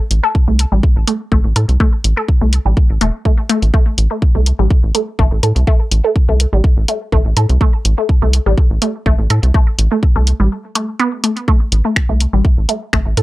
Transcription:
0.11 analog synth bass A1, closed hi-hat
0.23 synth pluck A4
0.35 kick
0.48 analog synth bass C2, synth pluck A3
0.59 closed hi-hat
0.72 analog synth bass A1, synth pluck G3
0.83 kick
0.96 analog synth bass A1
1.07 synth pluck A3, closed hi-hat
1.32 analog synth bass A1, synth pluck A3, kick
1.45 analog synth bass A1
1.56 analog synth bass A2, synth pluck A4, closed hi-hat
1.69 analog synth bass C2, closed hi-hat
1.80 synth pluck A3, kick
2.04 analog synth bass A1, closed hi-hat
2.17 synth pluck A4
2.28 kick
2.41 analog synth bass C2, synth pluck A3
2.53 closed hi-hat
2.66 analog synth bass A1, synth pluck G3
2.77 kick
2.90 analog synth bass A1
3.01 analog synth bass E1, synth pluck A3, closed hi-hat
3.25 synth pluck A3, kick
3.49 synth pluck A3, closed hi-hat
3.62 analog synth bass A1, closed hi-hat
3.74 synth pluck A3, kick
3.98 analog synth bass A1, closed hi-hat
4.11 synth pluck A3
4.22 kick
4.35 analog synth bass C2, synth pluck A3
4.46 closed hi-hat
4.59 analog synth bass A1, synth pluck G3
4.70 kick
4.83 analog synth bass A1
4.95 synth pluck A3, closed hi-hat
5.19 analog synth bass A1, synth pluck A3, kick
5.32 analog synth bass A1
5.43 analog synth bass A2, synth pluck A4, closed hi-hat
5.56 analog synth bass C2, closed hi-hat
5.67 synth pluck A3, kick
5.91 analog synth bass A1, closed hi-hat
6.04 synth pluck A3
6.16 kick
6.29 analog synth bass C2, synth pluck A3
6.40 closed hi-hat
6.53 analog synth bass A1, synth pluck G3
6.64 kick
6.77 analog synth bass A1
6.88 synth pluck A3, closed hi-hat
7.12 analog synth bass A1, synth pluck A3, kick
7.25 analog synth bass A1
7.37 analog synth bass A2, synth pluck A4, closed hi-hat
7.50 analog synth bass C2, closed hi-hat
7.61 synth pluck A3, kick
7.85 analog synth bass A1, closed hi-hat
7.98 synth pluck A3
8.09 kick
8.22 analog synth bass C2, synth pluck A3
8.33 closed hi-hat
8.46 analog synth bass A1, synth pluck G3
8.58 kick
8.70 analog synth bass A1
8.82 synth pluck A3, closed hi-hat
9.06 analog synth bass A1, synth pluck A3, kick
9.19 analog synth bass A1
9.30 analog synth bass A2, synth pluck A4, closed hi-hat
9.43 analog synth bass C2, closed hi-hat
9.54 synth pluck A3, kick
9.79 analog synth bass A1, closed hi-hat
9.92 synth pluck A3
10.03 kick
10.16 analog synth bass C2, synth pluck A3
10.27 closed hi-hat
10.40 analog synth bass A1, synth pluck G3
10.75 synth pluck A3, closed hi-hat
10.99 synth pluck B3, closed hi-hat
11.24 synth pluck A3, closed hi-hat
11.37 closed hi-hat
11.48 synth pluck A3, kick
11.72 analog synth bass A1, closed hi-hat
11.85 synth pluck A3
11.96 finger snap, kick
12.09 analog synth bass C2, synth pluck A3
12.20 closed hi-hat
12.33 analog synth bass A1, synth pluck G3
12.45 kick
12.58 analog synth bass A1
12.69 synth pluck A3, closed hi-hat
12.93 analog synth bass A1, synth pluck A3, finger snap, kick
13.06 analog synth bass A1
13.17 analog synth bass A2, synth pluck A4, closed hi-hat

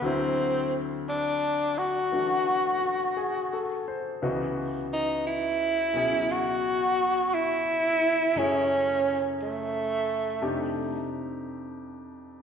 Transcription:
0.01 grand piano D2 D3 F#3 C4, tenor saxophone C4
0.06 grand piano E4
1.09 tenor saxophone D4
1.78 tenor saxophone F#4
2.12 grand piano E3 A3 D4 F#4
2.82 grand piano F#4
3.17 grand piano G#4
3.53 grand piano A4
3.88 grand piano C5
4.22 grand piano C#2 C#3 E3 B3 F#4 D#5
4.93 tenor saxophone D#4
5.27 tenor saxophone E4
5.94 grand piano B2 F#3 C#4 E4 G#4
6.32 tenor saxophone F#4
7.34 tenor saxophone E4
8.35 grand piano F#2 C#3 A3 E4, tenor saxophone C#4
8.39 grand piano G#4
9.42 tenor saxophone A3
10.41 grand piano F2 C3 A3 D4 D#4 G4

